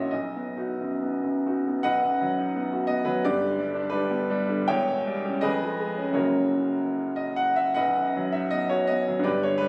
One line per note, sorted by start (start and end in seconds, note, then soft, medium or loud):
0.00 0.12 A#1 medium
0.00 0.12 A#2 soft
0.00 0.12 C#4 medium
0.00 0.13 E4 soft
0.00 0.13 F#4 soft
0.00 0.13 C#5 medium
0.00 0.11 D#5 medium
0.00 0.11 E5 medium
0.11 1.79 B1 medium
0.11 1.42 D#5 medium
0.37 0.70 B3 soft
0.57 0.75 D#4 soft
0.57 0.76 F#4 soft
0.81 1.13 F#2 soft
1.02 1.34 B3 soft
1.24 1.56 F#2 soft
1.47 1.63 D#4 soft
1.47 1.63 F#4 soft
1.68 1.85 B3 soft
1.83 3.22 B1 medium
1.83 2.88 B4 medium
1.83 2.86 D#5 medium
1.83 2.91 F#5 loud
2.02 2.31 F#2 soft
2.21 2.49 F#3 medium
2.38 2.66 D#4 medium
2.56 2.84 B3 medium
2.73 3.01 F#4 medium
2.87 3.18 B3 medium
2.87 3.06 D#5 medium
3.05 3.23 F#3 medium
3.05 3.23 B4 medium
3.24 4.67 G1 medium
3.24 4.67 G2 medium
3.24 3.89 G4 medium
3.24 3.88 B4 medium
3.24 3.93 D5 loud
3.41 3.69 D3 medium
3.59 3.86 G3 medium
3.75 3.90 D4 medium
3.90 4.23 G3 medium
3.90 4.66 D4 medium
3.90 4.66 G4 medium
3.90 4.69 B4 loud
4.11 4.43 B3 medium
4.30 4.62 G3 medium
4.49 4.70 D3 medium
4.68 5.42 E1 medium
4.68 5.42 E2 medium
4.68 5.40 C#5 medium
4.68 5.40 E5 medium
4.68 5.44 G5 loud
4.90 5.19 B2 medium
5.07 5.37 G3 medium
5.25 5.44 C#4 medium
5.41 6.18 F2 medium
5.41 6.15 G#4 medium
5.41 6.15 B4 medium
5.41 6.19 D#5 loud
5.62 5.93 F3 medium
5.80 6.12 G#3 medium
5.97 6.13 C#4 medium
6.11 7.71 F#2 medium
6.11 7.72 F#3 soft
6.11 7.72 A#3 medium
6.11 7.73 C#4 soft
6.11 7.18 C#5 medium
6.15 7.73 F#1 medium
6.15 7.14 F#4 medium
6.15 7.15 A#4 medium
7.16 7.39 D#5 medium
7.36 7.59 F#5 loud
7.56 7.78 E5 medium
7.74 9.20 B1 medium
7.74 8.30 B4 medium
7.74 8.30 D#5 medium
7.74 8.33 F#5 loud
7.96 8.27 F#2 medium
8.16 8.46 F#3 medium
8.32 8.64 D#4 medium
8.32 8.52 E5 medium
8.51 8.82 B3 soft
8.51 8.70 D#5 loud
8.69 9.00 F#4 medium
8.69 8.89 C#5 medium
8.87 9.19 B3 medium
8.87 9.24 D#5 loud
9.08 9.26 F#3 medium
9.19 9.68 G2 medium
9.19 9.42 D5 medium
9.24 9.68 G1 medium
9.24 9.42 G4 medium
9.24 9.42 B4 medium
9.43 9.68 D3 medium
9.43 9.61 C#5 medium
9.58 9.68 G3 medium
9.58 9.68 B4 loud